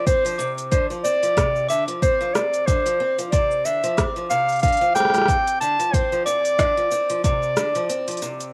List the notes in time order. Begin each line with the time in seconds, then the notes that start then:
0.06 C4 C5, kick, open hi-hat, shaker
0.25 F3, open hi-hat, shaker
0.28 shaker
0.30 shaker
0.31 shaker
0.34 shaker
0.36 shaker
0.38 C3 D6, shaker
0.40 shaker
0.58 open hi-hat, shaker
0.71 D3 C5, kick, open hi-hat, shaker
0.90 F3, shaker
1.04 C4 D5, shaker
1.23 F3, open hi-hat, shaker
1.37 C3, kick, cross-stick, open hi-hat, shaker
1.56 shaker
1.69 D3 E5 D6, shaker
1.88 F3, open hi-hat
2.02 C4 C5, kick, open hi-hat, shaker
2.21 F3, shaker
2.34 C3 D5, cross-stick, shaker
2.54 open hi-hat, shaker
2.66 D3 C5 D6, kick, open hi-hat, shaker
2.86 F3, open hi-hat, shaker
3.00 C4
3.18 F3, open hi-hat, shaker
3.32 C3 D5, kick, open hi-hat, shaker
3.51 shaker
3.65 D3 E5, shaker
3.84 F3, open hi-hat, shaker
3.97 C4 D6, kick, cross-stick, open hi-hat, shaker
4.16 F3, shaker
4.30 C3 F5, shaker
4.49 open hi-hat, shaker
4.52 open hi-hat
4.56 open hi-hat
4.59 D3 F5, open hi-hat
4.63 kick, open hi-hat, shaker
4.68 open hi-hat
4.73 open hi-hat
4.77 open hi-hat
4.81 F3, shaker
4.95 C4 G5 D6, cross-stick, shaker
5.00 cross-stick
5.05 cross-stick
5.10 F3, cross-stick
5.15 cross-stick, open hi-hat, shaker
5.18 cross-stick
5.22 cross-stick
5.26 C3, kick, cross-stick, open hi-hat, shaker
5.47 open hi-hat, shaker
5.60 D3 A5, shaker
5.79 F3, open hi-hat, shaker
5.93 C4 C5, kick, open hi-hat, shaker
6.12 F3, shaker
6.26 C3 D5 D6, shaker
6.45 open hi-hat, shaker
6.59 D3, kick, cross-stick, open hi-hat, shaker
6.77 F3, shaker
6.91 C4, shaker
7.10 F3, open hi-hat, shaker
7.24 C3 D5 D6, kick, open hi-hat, shaker
7.43 shaker
7.57 D3, cross-stick, shaker
7.75 F3, open hi-hat, shaker
7.89 C4, open hi-hat, shaker
8.07 F3, open hi-hat, shaker
8.11 open hi-hat
8.17 open hi-hat
8.22 C3, shaker
8.40 open hi-hat, shaker